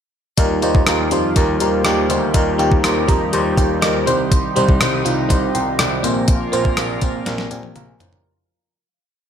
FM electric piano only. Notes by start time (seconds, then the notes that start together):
0.38 G3 D#4 F4 A#4
0.62 G3 D#4 F4 C5
0.87 G3 D#4 F4 A#4
1.11 G3 D#4 F4 C5
1.36 G3 D#4 F4 A#4
1.60 G3 D#4 F4 A#4
1.84 G3 D#4 F4 G4
2.09 G3 D#4 F4 C5
2.34 G3 D#4 F4 A#4
2.58 G3 D#4 F4 G4
2.83 G3 D#4 F4 C5
3.07 G3 D#4 F4 A#4 D#5
3.32 G3 D#4 F4 C5 F5
3.56 G3 D#4 F4 A#4 G5
3.81 G3 D#4 F4 A#4 A#5
4.06 G3 C4 D#4 C5 C6
4.56 G3 C4 D#4 C5
4.80 G3 C4 D#4 C5
5.04 G3 C4 D#4 F4
5.29 G3 C4 D#4 C5
5.54 G5 C6
5.79 D5 G5
6.03 A#3 C4 F4 C5
6.52 A#3 C4 F4 C5
6.77 A#3 C4 F4 D5
7.02 A#3 C4 F4 C5
7.25 A#3 C4 F4 A#4
7.50 A#3 C4 F4 G4 G#5
7.76 F5 A#5
8.00 C5 F5